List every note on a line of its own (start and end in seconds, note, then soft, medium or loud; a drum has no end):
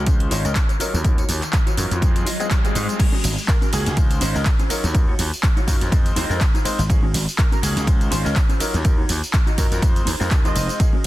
0.00 0.28 C#2 medium
0.00 riser medium
0.07 0.29 G#3 medium
0.07 0.29 C5 medium
0.07 kick loud
0.07 closed hi-hat medium
0.07 tambourine soft
0.20 closed hi-hat medium
0.31 0.43 G#1 medium
0.31 0.43 G#3 medium
0.31 0.43 C#4 medium
0.31 0.43 D#4 medium
0.31 0.50 F4 loud
0.31 0.43 F4 medium
0.31 0.50 C5 loud
0.31 0.43 C5 loud
0.31 0.51 C#5 loud
0.31 open hi-hat loud
0.31 tambourine medium
0.45 0.54 C#2 medium
0.45 0.56 G#3 medium
0.45 0.56 C#4 medium
0.45 0.56 D#4 medium
0.45 0.56 F4 medium
0.45 0.56 A#4 loud
0.45 closed hi-hat soft
0.45 tambourine soft
0.55 kick medium
0.55 clap loud
0.55 closed hi-hat medium
0.55 tambourine soft
0.69 muted clean electric guitar stroke medium
0.69 closed hi-hat soft
0.69 tambourine soft
0.79 0.94 F#3 medium
0.79 0.94 C#4 medium
0.79 0.94 D#4 medium
0.79 1.10 F4 medium
0.79 0.94 F4 medium
0.79 1.10 F#4 medium
0.79 0.94 A#4 loud
0.79 1.10 C#5 loud
0.79 muted slap bass stroke soft
0.79 open hi-hat medium
0.79 tambourine medium
0.94 1.26 D#2 medium
0.94 tambourine soft
1.04 1.13 F#3 medium
1.04 1.13 C#4 medium
1.04 1.13 D#4 medium
1.04 1.13 F4 medium
1.04 1.13 A#4 medium
1.04 kick loud
1.04 closed hi-hat medium
1.04 tambourine soft
1.18 1.35 F4 loud
1.18 1.36 F#4 loud
1.18 1.36 C#5 loud
1.18 closed hi-hat soft
1.18 tambourine soft
1.29 1.40 D#2 loud
1.29 open hi-hat loud
1.29 tambourine medium
1.42 clap soft
1.42 closed hi-hat soft
1.42 tambourine soft
1.53 muted clean electric guitar stroke soft
1.53 kick loud
1.53 clap loud
1.53 closed hi-hat medium
1.53 tambourine soft
1.66 1.96 F4 medium
1.66 1.97 F#4 medium
1.66 1.97 C#5 medium
1.66 closed hi-hat soft
1.66 tambourine soft
1.77 1.89 F#2 medium
1.77 1.99 F#3 medium
1.77 1.99 C#4 medium
1.77 2.00 D#4 medium
1.77 2.00 F4 medium
1.77 2.00 A#4 medium
1.77 open hi-hat medium
1.77 tambourine medium
1.91 2.23 F2 medium
1.91 closed hi-hat medium
1.91 tambourine soft
2.02 2.24 G#3 medium
2.02 2.24 C4 medium
2.02 2.24 D#4 medium
2.02 2.24 F4 medium
2.02 2.24 G#4 medium
2.02 kick loud
2.02 closed hi-hat medium
2.02 tambourine soft
2.16 closed hi-hat medium
2.16 tambourine soft
2.26 2.45 F4 loud
2.26 2.45 G#4 loud
2.26 2.46 D#5 loud
2.26 open hi-hat loud
2.26 tambourine medium
2.40 2.47 G#3 medium
2.40 2.47 C4 medium
2.40 2.47 D#4 medium
2.40 2.47 F4 medium
2.40 2.47 G#4 medium
2.40 closed hi-hat soft
2.40 tambourine soft
2.51 kick loud
2.51 clap loud
2.51 closed hi-hat medium
2.51 tambourine soft
2.64 2.97 G#3 medium
2.64 2.97 C4 medium
2.64 2.97 D#4 medium
2.64 2.97 F4 medium
2.64 2.97 G#4 loud
2.64 muted clean electric guitar stroke medium
2.64 closed hi-hat soft
2.64 tambourine soft
2.75 2.87 G#2 loud
2.75 muted clean electric guitar stroke soft
2.75 open hi-hat medium
2.75 tambourine medium
2.89 closed hi-hat soft
2.89 tambourine soft
2.99 3.08 A#3 medium
2.99 kick loud
2.99 closed hi-hat medium
2.99 crash loud
2.99 ride medium
2.99 tambourine soft
3.12 3.30 C#4 loud
3.12 3.31 F#4 loud
3.12 3.31 G#4 loud
3.12 3.31 A#4 loud
3.24 3.35 G#1 loud
3.24 open hi-hat loud
3.24 ride medium
3.24 tambourine medium
3.38 tambourine soft
3.48 3.57 A#4 medium
3.48 muted clean electric guitar stroke soft
3.48 kick loud
3.48 clap loud
3.48 closed hi-hat medium
3.48 ride medium
3.48 tambourine soft
3.62 3.91 C#4 medium
3.62 3.92 F#4 medium
3.62 3.92 G#4 medium
3.62 3.69 A#4 medium
3.62 3.92 A#4 medium
3.62 closed hi-hat soft
3.62 tambourine soft
3.73 3.84 C#2 medium
3.73 3.94 A#3 medium
3.73 3.95 C#4 medium
3.73 3.95 D#4 medium
3.73 3.95 F#4 medium
3.73 3.82 G#4 medium
3.73 3.95 G#4 medium
3.73 open hi-hat medium
3.73 ride medium
3.73 tambourine medium
3.86 4.19 C#2 medium
3.86 3.93 G#4 medium
3.86 closed hi-hat medium
3.86 tambourine soft
3.97 4.19 G#3 medium
3.97 4.19 C#4 medium
3.97 4.19 D#4 medium
3.97 4.19 F4 medium
3.97 4.19 C5 medium
3.97 kick loud
3.97 closed hi-hat medium
3.97 ride medium
3.97 tambourine soft
4.11 closed hi-hat medium
4.11 tambourine soft
4.21 4.33 G#1 medium
4.21 4.33 G#3 medium
4.21 4.40 C#4 loud
4.21 4.33 C#4 medium
4.21 4.33 D#4 medium
4.21 4.41 F4 loud
4.21 4.33 F4 medium
4.21 4.41 G#4 loud
4.21 4.33 C5 loud
4.21 4.41 C5 loud
4.21 open hi-hat loud
4.21 ride medium
4.21 tambourine medium
4.34 4.44 C#2 medium
4.34 4.46 G#3 medium
4.34 4.46 C#4 medium
4.34 4.46 D#4 medium
4.34 4.46 F4 medium
4.34 4.46 A#4 loud
4.34 tambourine soft
4.45 kick loud
4.45 clap loud
4.45 closed hi-hat medium
4.45 ride medium
4.45 tambourine soft
4.59 4.70 C#4 medium
4.59 4.69 F4 medium
4.59 4.70 G#4 medium
4.59 4.71 C5 loud
4.59 closed hi-hat soft
4.59 tambourine soft
4.70 4.84 F#3 medium
4.70 4.84 C#4 medium
4.70 5.00 D#4 medium
4.70 4.84 D#4 medium
4.70 4.84 F4 medium
4.70 5.00 F4 medium
4.70 5.00 F#4 medium
4.70 4.84 A#4 medium
4.70 5.00 C#5 loud
4.70 muted slap bass stroke soft
4.70 open hi-hat medium
4.70 ride medium
4.70 tambourine medium
4.84 5.16 D#2 medium
4.84 closed hi-hat soft
4.84 tambourine soft
4.94 5.03 F#3 medium
4.94 5.03 C#4 medium
4.94 5.03 D#4 medium
4.94 5.03 F4 medium
4.94 5.03 A#4 medium
4.94 kick loud
4.94 closed hi-hat medium
4.94 ride medium
4.94 tambourine soft
5.08 5.26 D#4 loud
5.08 5.26 F4 loud
5.08 5.26 F#4 loud
5.08 5.26 C#5 loud
5.19 5.30 D#2 loud
5.19 open hi-hat loud
5.19 ride medium
5.19 tambourine medium
5.34 tambourine soft
5.43 muted clean electric guitar stroke soft
5.43 kick loud
5.43 clap loud
5.43 closed hi-hat medium
5.43 ride medium
5.43 tambourine soft
5.56 5.86 D#4 medium
5.56 5.87 F4 medium
5.56 5.87 F#4 medium
5.56 5.87 C#5 loud
5.56 closed hi-hat soft
5.56 tambourine soft
5.67 5.79 F#2 medium
5.67 5.89 F#3 medium
5.67 5.89 C#4 medium
5.67 5.90 D#4 medium
5.67 5.90 F4 medium
5.67 5.90 A#4 medium
5.67 kick medium
5.67 open hi-hat loud
5.67 ride medium
5.67 tambourine medium
5.81 6.14 F2 medium
5.81 closed hi-hat medium
5.81 tambourine soft
5.92 6.14 G#3 medium
5.92 6.14 C4 medium
5.92 6.14 D#4 medium
5.92 6.14 F4 medium
5.92 6.14 C5 medium
5.92 kick loud
5.92 closed hi-hat medium
5.92 ride medium
5.92 tambourine soft
6.06 closed hi-hat medium
6.06 tambourine soft
6.16 6.28 D#2 loud
6.16 6.28 G#3 loud
6.16 6.28 C4 medium
6.16 6.35 D#4 loud
6.16 6.28 D#4 medium
6.16 6.36 F4 loud
6.16 6.28 F4 medium
6.16 6.36 G#4 loud
6.16 6.28 C5 loud
6.16 6.36 C5 loud
6.16 open hi-hat loud
6.16 ride medium
6.16 tambourine medium
6.29 6.39 F2 medium
6.29 6.41 G#3 medium
6.29 6.41 C4 medium
6.29 6.41 D#4 medium
6.29 6.41 F4 medium
6.29 6.41 A#4 loud
6.29 tambourine soft
6.41 kick loud
6.41 clap loud
6.41 closed hi-hat medium
6.41 ride medium
6.41 tambourine soft
6.54 6.79 D#4 medium
6.54 6.79 F4 medium
6.54 6.79 G#4 medium
6.54 6.79 C5 loud
6.54 closed hi-hat soft
6.54 tambourine soft
6.65 6.79 G#3 medium
6.65 6.79 C4 medium
6.65 6.79 D#4 medium
6.65 6.79 F4 medium
6.65 6.79 C5 loud
6.65 muted slap bass stroke soft
6.65 open hi-hat loud
6.65 ride medium
6.65 tambourine medium
6.79 7.11 G#1 medium
6.79 closed hi-hat soft
6.79 tambourine soft
6.89 6.98 A#3 medium
6.89 6.98 C#4 medium
6.89 6.98 D#4 medium
6.89 6.98 F#4 medium
6.89 6.98 G#4 medium
6.89 kick loud
6.89 closed hi-hat medium
6.89 ride medium
6.89 tambourine soft
7.03 7.21 C#4 loud
7.03 7.21 F#4 loud
7.03 7.21 G#4 loud
7.03 7.21 A#4 loud
7.14 7.25 G#1 loud
7.14 open hi-hat loud
7.14 ride medium
7.14 tambourine medium
7.29 tambourine soft
7.38 7.47 A#4 medium
7.38 muted clean electric guitar stroke soft
7.38 kick loud
7.38 clap loud
7.38 closed hi-hat medium
7.38 ride medium
7.38 tambourine soft
7.52 7.82 C#4 medium
7.52 7.82 F#4 medium
7.52 7.82 G#4 medium
7.52 7.59 A#4 medium
7.52 7.82 A#4 medium
7.52 closed hi-hat soft
7.52 tambourine soft
7.62 7.74 C#2 medium
7.62 7.84 A#3 medium
7.62 7.84 C#4 medium
7.62 7.85 D#4 medium
7.62 7.85 F#4 medium
7.62 7.85 G#4 medium
7.62 open hi-hat loud
7.62 ride medium
7.62 tambourine medium
7.76 8.09 C#2 medium
7.76 closed hi-hat medium
7.76 tambourine soft
7.87 8.09 G#3 medium
7.87 8.09 C#4 medium
7.87 8.09 D#4 medium
7.87 8.09 F4 medium
7.87 8.09 C5 medium
7.87 kick loud
7.87 closed hi-hat medium
7.87 ride medium
7.87 tambourine soft
8.01 closed hi-hat medium
8.01 tambourine soft
8.11 8.23 G#1 loud
8.11 8.23 G#3 medium
8.11 8.23 C#4 medium
8.11 8.30 C#4 loud
8.11 8.23 D#4 medium
8.11 8.23 F4 medium
8.11 8.31 F4 loud
8.11 8.31 G#4 loud
8.11 8.23 C5 loud
8.11 8.31 C5 loud
8.11 open hi-hat loud
8.11 ride medium
8.11 tambourine medium
8.25 8.34 C#2 medium
8.25 8.36 G#3 medium
8.25 8.36 C#4 medium
8.25 8.36 D#4 medium
8.25 8.36 F4 medium
8.25 8.36 A#4 loud
8.25 tambourine soft
8.36 kick loud
8.36 clap loud
8.36 closed hi-hat medium
8.36 ride medium
8.36 tambourine soft
8.49 8.60 C#4 medium
8.49 8.59 F4 medium
8.49 8.60 G#4 medium
8.49 8.61 C5 medium
8.49 closed hi-hat soft
8.49 tambourine soft
8.60 8.74 F#3 medium
8.60 8.74 C#4 medium
8.60 8.90 D#4 medium
8.60 8.74 D#4 medium
8.60 8.90 F4 medium
8.60 8.74 F4 medium
8.60 8.90 F#4 medium
8.60 8.74 A#4 loud
8.60 8.91 C#5 loud
8.60 muted slap bass stroke soft
8.60 open hi-hat loud
8.60 ride medium
8.60 tambourine medium
8.74 9.06 D#2 medium
8.74 closed hi-hat soft
8.74 tambourine soft
8.84 8.93 F#3 medium
8.84 8.93 C#4 medium
8.84 8.93 D#4 medium
8.84 8.93 F4 medium
8.84 8.93 A#4 medium
8.84 kick loud
8.84 closed hi-hat medium
8.84 ride medium
8.84 tambourine soft
8.98 9.16 D#4 loud
8.98 9.16 F4 loud
8.98 9.16 F#4 loud
8.98 9.16 C#5 loud
9.09 9.21 D#2 loud
9.09 open hi-hat loud
9.09 ride medium
9.09 tambourine medium
9.24 tambourine soft
9.33 muted clean electric guitar stroke soft
9.33 kick loud
9.33 clap loud
9.33 closed hi-hat medium
9.33 ride medium
9.33 tambourine soft
9.46 9.77 D#4 medium
9.46 9.77 F4 medium
9.46 9.77 F#4 medium
9.46 9.77 D#5 loud
9.46 closed hi-hat soft
9.46 tambourine soft
9.58 9.69 F#2 medium
9.58 9.80 F#3 medium
9.58 9.80 C#4 medium
9.58 9.80 D#4 medium
9.58 9.80 F4 medium
9.58 9.67 A#4 medium
9.58 9.80 A#4 medium
9.58 kick medium
9.58 open hi-hat medium
9.58 ride medium
9.58 tambourine medium
9.71 10.04 F2 medium
9.71 9.79 A#4 medium
9.71 closed hi-hat medium
9.71 tambourine soft
9.82 10.04 G#3 medium
9.82 10.04 C4 medium
9.82 10.04 D#4 medium
9.82 10.04 F4 medium
9.82 10.04 C5 loud
9.82 kick loud
9.82 closed hi-hat medium
9.82 ride medium
9.82 tambourine soft
9.96 closed hi-hat medium
9.96 tambourine soft
10.06 10.18 D#2 medium
10.06 10.25 D#4 loud
10.06 10.26 F4 loud
10.06 10.26 G#4 loud
10.06 10.26 C5 loud
10.06 open hi-hat loud
10.06 ride medium
10.06 tambourine medium
10.20 10.31 F2 medium
10.20 10.27 G#3 medium
10.20 10.27 C4 medium
10.20 10.27 D#4 medium
10.20 10.27 F4 medium
10.20 10.27 A#4 medium
10.20 tambourine soft
10.31 10.57 D#2 loud
10.31 kick loud
10.31 clap loud
10.31 closed hi-hat medium
10.31 ride medium
10.31 tambourine soft
10.44 10.77 G#3 medium
10.44 10.77 C4 medium
10.44 10.69 D#4 medium
10.44 10.77 D#4 medium
10.44 10.69 F4 medium
10.44 10.77 F4 medium
10.44 10.69 G#4 medium
10.44 10.78 C5 loud
10.44 10.70 C5 loud
10.44 10.85 D#5 loud
10.44 closed hi-hat soft
10.44 tambourine soft
10.56 10.67 F1 medium
10.56 open hi-hat loud
10.56 ride medium
10.56 tambourine medium
10.69 closed hi-hat soft
10.69 tambourine soft
10.79 10.88 A#3 medium
10.79 10.88 C#4 medium
10.79 10.88 D#4 medium
10.79 10.88 F#4 medium
10.79 10.89 G#4 medium
10.79 kick loud
10.79 closed hi-hat medium
10.79 ride medium
10.79 tambourine soft
10.93 11.06 C#4 loud
10.93 11.06 F#4 loud
10.93 11.06 G#4 loud
10.93 11.06 A#4 loud